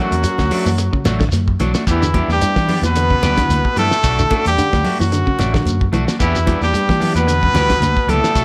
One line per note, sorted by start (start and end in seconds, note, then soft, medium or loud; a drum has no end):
0.00 1.29 F#2 medium
0.00 0.18 E3 medium
0.00 0.14 F#3 medium
0.00 1.30 F#3 medium
0.00 0.14 A3 medium
0.00 0.15 D4 medium
0.00 0.15 F#4 medium
0.00 1.29 F#4 medium
0.11 0.21 E2 medium
0.11 closed hi-hat medium
0.11 high conga medium
0.11 shekere soft
0.24 0.45 F#3 medium
0.24 closed hi-hat medium
0.24 shekere medium
0.38 0.49 D2 loud
0.38 kick medium
0.38 snare medium
0.38 high conga medium
0.51 0.68 F#3 medium
0.51 0.68 A3 medium
0.51 0.69 D4 medium
0.51 0.69 F#4 medium
0.51 open hi-hat medium
0.51 low conga medium
0.51 shekere soft
0.66 0.88 F#2 loud
0.66 0.76 E3 medium
0.66 high conga medium
0.66 shekere medium
0.78 muted clean electric guitar stroke medium
0.78 closed hi-hat medium
0.78 shekere medium
0.93 1.14 C#3 medium
0.93 kick medium
1.05 1.27 A1 medium
1.05 1.23 F#3 medium
1.05 1.23 A3 medium
1.05 1.23 D4 medium
1.05 1.23 F#4 medium
1.05 snare medium
1.05 closed hi-hat medium
1.05 high conga loud
1.05 shekere medium
1.20 1.42 D3 medium
1.20 kick medium
1.20 snare medium
1.20 shekere soft
1.32 1.55 F#2 medium
1.32 snare soft
1.32 closed hi-hat medium
1.32 high conga medium
1.32 shekere medium
1.48 kick medium
1.60 1.72 B1 medium
1.60 1.82 E3 medium
1.60 1.75 F#3 medium
1.60 1.74 D4 medium
1.60 1.73 F#4 medium
1.60 closed hi-hat soft
1.60 high conga medium
1.60 low conga medium
1.60 shekere soft
1.74 1.87 A3 soft
1.74 1.86 D4 soft
1.74 1.87 F#4 soft
1.74 snare medium
1.74 high conga medium
1.74 shekere medium
1.87 2.21 E2 loud
1.87 2.28 E2 medium
1.87 2.04 E3 medium
1.87 2.28 E3 medium
1.87 2.04 B3 medium
1.87 2.04 D4 medium
1.87 2.28 E4 medium
1.87 2.04 G4 medium
1.87 kick medium
1.87 closed hi-hat medium
1.87 shekere medium
2.02 2.12 D3 medium
2.02 2.07 D4 medium
2.02 2.07 F#4 medium
2.02 snare soft
2.02 shekere loud
2.13 2.31 E3 medium
2.13 2.26 G3 medium
2.13 2.31 B3 medium
2.13 2.26 B3 medium
2.13 2.31 D4 medium
2.13 2.26 D4 medium
2.13 2.26 F#4 medium
2.13 2.32 G4 medium
2.13 muted clean electric guitar stroke medium
2.13 kick medium
2.13 closed hi-hat medium
2.13 high conga medium
2.28 2.38 E2 medium
2.28 snare soft
2.28 high conga medium
2.28 shekere soft
2.32 2.81 G2 medium
2.32 2.81 G3 medium
2.32 2.81 G4 loud
2.41 2.73 G3 medium
2.41 2.63 G3 medium
2.41 2.73 B3 medium
2.41 2.74 D4 medium
2.41 2.73 E4 medium
2.41 closed hi-hat medium
2.41 shekere medium
2.56 2.78 E3 medium
2.56 kick medium
2.56 snare medium
2.68 2.85 E3 medium
2.68 2.85 B3 medium
2.68 2.86 D4 medium
2.68 2.86 G4 medium
2.68 open hi-hat medium
2.68 low conga loud
2.68 shekere soft
2.82 3.14 E2 loud
2.82 2.93 E3 medium
2.82 closed hi-hat medium
2.82 high conga medium
2.82 shekere medium
2.86 3.74 B2 medium
2.86 3.75 B3 loud
2.86 3.74 B4 loud
2.96 3.07 D3 medium
2.96 closed hi-hat medium
2.96 shekere medium
3.10 3.32 C#3 medium
3.10 kick medium
3.21 3.43 D2 medium
3.21 3.39 E3 medium
3.21 3.61 G3 medium
3.21 3.40 B3 medium
3.21 3.61 B3 medium
3.21 3.40 D4 medium
3.21 3.61 D4 medium
3.21 3.61 E4 medium
3.21 3.40 G4 medium
3.21 snare medium
3.21 closed hi-hat medium
3.21 high conga loud
3.21 shekere medium
3.37 3.59 D3 medium
3.37 kick medium
3.37 snare medium
3.37 closed hi-hat medium
3.37 shekere soft
3.49 3.61 D2 medium
3.49 snare soft
3.49 closed hi-hat medium
3.49 high conga medium
3.49 shekere medium
3.64 muted fingered electric bass stroke soft
3.64 kick medium
3.76 3.88 G2 medium
3.76 4.42 A2 medium
3.76 3.93 E3 medium
3.76 4.42 A3 loud
3.76 3.94 B3 medium
3.76 3.94 D4 medium
3.76 3.94 G4 medium
3.76 4.42 A4 loud
3.76 closed hi-hat soft
3.76 high conga medium
3.76 low conga medium
3.76 shekere soft
3.91 snare medium
3.91 shekere medium
4.03 4.26 B1 loud
4.03 4.20 A3 medium
4.03 4.21 D4 medium
4.03 4.21 F#4 medium
4.03 kick loud
4.03 closed hi-hat medium
4.03 shekere medium
4.19 4.28 D3 medium
4.19 4.23 D4 medium
4.19 4.23 F#4 medium
4.19 shekere medium
4.30 4.47 A3 medium
4.30 4.42 A3 medium
4.30 4.42 C#4 medium
4.30 4.48 D4 medium
4.30 4.42 D4 medium
4.30 4.48 F#4 medium
4.30 4.42 A4 medium
4.30 muted clean electric guitar stroke medium
4.30 kick medium
4.30 snare soft
4.30 closed hi-hat medium
4.30 high conga loud
4.45 4.55 E2 medium
4.45 4.96 G2 medium
4.45 4.97 G3 medium
4.45 4.96 G4 loud
4.45 closed hi-hat medium
4.45 high conga medium
4.45 shekere soft
4.58 4.79 D3 medium
4.58 4.90 A3 medium
4.58 4.90 C#4 medium
4.58 4.90 D4 medium
4.58 4.90 F#5 medium
4.58 closed hi-hat medium
4.58 shekere medium
4.72 4.83 D2 medium
4.72 kick medium
4.72 snare medium
4.72 high conga medium
4.84 5.01 A3 medium
4.84 5.02 F#4 medium
4.84 open hi-hat medium
4.84 low conga medium
4.84 shekere soft
4.99 5.22 F#2 medium
4.99 5.90 F#2 medium
4.99 5.10 E3 medium
4.99 5.89 F#3 medium
4.99 5.89 F#4 medium
4.99 high conga medium
4.99 shekere medium
5.12 5.24 D3 medium
5.12 closed hi-hat medium
5.12 shekere medium
5.27 5.48 C#3 medium
5.27 kick medium
5.39 5.61 A1 medium
5.39 5.56 A3 medium
5.39 5.77 A3 medium
5.39 5.77 C#4 medium
5.39 5.77 D4 medium
5.39 5.56 D4 medium
5.39 5.77 F#4 medium
5.39 snare medium
5.39 closed hi-hat medium
5.39 high conga loud
5.39 shekere medium
5.54 5.75 D3 medium
5.54 kick medium
5.54 snare medium
5.54 shekere soft
5.65 5.87 F#2 medium
5.65 closed hi-hat medium
5.65 high conga medium
5.65 shekere medium
5.81 kick medium
5.92 6.04 B1 medium
5.92 6.14 E3 medium
5.92 6.07 A3 medium
5.92 6.07 D4 medium
5.92 6.06 F#4 medium
5.92 closed hi-hat soft
5.92 high conga medium
5.92 low conga medium
5.92 shekere soft
6.07 6.19 D4 soft
6.07 6.19 F#4 medium
6.07 snare medium
6.07 high conga medium
6.07 shekere medium
6.19 6.54 E2 medium
6.19 6.59 E2 medium
6.19 6.37 E3 medium
6.19 6.59 E3 medium
6.19 6.37 B3 medium
6.19 6.37 D4 medium
6.19 6.59 E4 medium
6.19 6.37 G4 medium
6.19 kick loud
6.19 closed hi-hat medium
6.19 shekere medium
6.35 6.40 D4 medium
6.35 6.39 F#4 medium
6.35 snare soft
6.35 shekere medium
6.46 6.64 E3 medium
6.46 6.68 E3 medium
6.46 6.59 G3 medium
6.46 6.64 B3 medium
6.46 6.58 B3 medium
6.46 6.64 D4 medium
6.46 6.59 D4 medium
6.46 6.59 F#4 medium
6.46 6.64 G4 medium
6.46 kick medium
6.46 snare soft
6.46 closed hi-hat medium
6.46 high conga medium
6.61 6.71 E2 medium
6.61 7.12 G2 medium
6.61 7.12 G3 medium
6.61 7.13 G4 loud
6.61 snare soft
6.61 high conga medium
6.61 shekere soft
6.74 6.95 G3 medium
6.74 7.06 G3 medium
6.74 7.07 B3 medium
6.74 7.07 D4 medium
6.74 7.06 G4 medium
6.74 closed hi-hat medium
6.74 shekere medium
6.89 7.11 E3 loud
6.89 kick medium
6.89 snare medium
6.89 high conga medium
7.00 7.15 E3 medium
7.00 7.14 B3 medium
7.00 7.14 D4 medium
7.00 7.13 G4 medium
7.00 open hi-hat medium
7.00 low conga medium
7.00 shekere soft
7.14 7.47 E2 medium
7.14 8.11 B2 loud
7.14 7.25 E3 medium
7.14 7.31 B3 soft
7.14 8.11 B3 medium
7.14 7.30 D4 soft
7.14 7.30 G4 soft
7.14 8.11 B4 loud
7.14 closed hi-hat soft
7.14 high conga medium
7.14 shekere medium
7.27 7.39 D3 medium
7.27 closed hi-hat medium
7.27 shekere medium
7.43 7.64 C#3 medium
7.43 kick medium
7.43 low conga medium
7.53 7.76 D2 medium
7.53 7.71 E3 medium
7.53 7.93 G3 medium
7.53 7.72 B3 medium
7.53 7.93 B3 medium
7.53 7.93 D4 medium
7.53 7.93 F#4 medium
7.53 7.72 G4 medium
7.53 muted clean electric guitar stroke medium
7.53 snare medium
7.53 closed hi-hat medium
7.53 high conga loud
7.53 shekere medium
7.69 7.91 D3 medium
7.69 kick medium
7.69 snare medium
7.69 closed hi-hat medium
7.69 shekere soft
7.81 7.93 D2 medium
7.81 snare soft
7.81 closed hi-hat medium
7.81 high conga medium
7.81 shekere medium
7.97 kick medium
8.07 8.20 C#2 medium
8.07 8.45 A2 medium
8.07 8.30 D3 medium
8.07 8.23 E3 medium
8.07 8.45 A3 medium
8.07 8.23 B3 medium
8.07 8.22 D4 medium
8.07 8.22 G4 medium
8.07 8.45 A4 loud
8.07 closed hi-hat medium
8.07 high conga medium
8.07 low conga medium
8.07 shekere soft
8.23 8.35 B3 soft
8.23 8.35 D4 soft
8.23 8.35 G4 soft
8.23 snare medium
8.23 high conga medium
8.23 shekere medium
8.35 8.45 B1 medium
8.35 8.45 F#3 medium
8.35 8.45 A3 medium
8.35 8.45 D4 medium
8.35 8.45 F#4 medium
8.35 kick loud
8.35 closed hi-hat medium
8.35 shekere medium